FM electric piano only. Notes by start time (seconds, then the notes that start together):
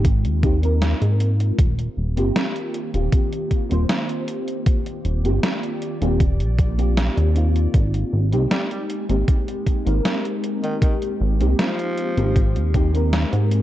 0.43 A#3 C4 D#4 G4
0.62 A#3 C4 D#4 A#4
2.17 A#3 C4 F4 G4
2.93 A#3 C4 F4 G4
3.69 A#3 C4 F4 C5
5.24 A#3 C4 F4 G4
6.01 A#3 C4 F4 G4
6.78 A#3 C4 F4 G4
7.34 A#3 C4 D#4 F4
8.32 A#3 C4 D#4 G4
9.09 A#3 C4 D#4 G4
9.85 A#3 C4 D#4 A#4
11.40 A#3 C4 D#4 G4
12.16 A#3 C4 D#4 G4
12.74 A#3 C4 D#4 G4
12.93 A#3 C4 D#4 A#4